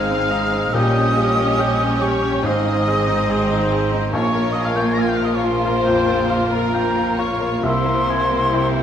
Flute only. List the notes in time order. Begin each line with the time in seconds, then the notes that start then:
Already playing: F6
0.73 D#6
2.02 C#6
2.45 D#6
4.14 C#6
4.53 D#6
4.65 F6
4.76 G6
4.86 G#6
4.94 A#6
5.01 G#6
5.09 G6
5.17 F6
5.25 D#6
5.35 C#6
5.44 C6
6.53 A#5
7.19 C#6
7.65 C6